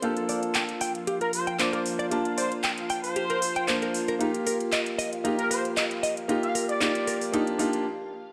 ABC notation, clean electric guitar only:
X:1
M:4/4
L:1/16
Q:"Swing 16ths" 1/4=115
K:Gm
V:1 name="Clean electric guitar"
G z d z g z g z G B z g z B z d | G z d z g z g z G B z g z B z B | E z B z e z e z E z B z e z e z | E z B z E z B z E z E z4 z |]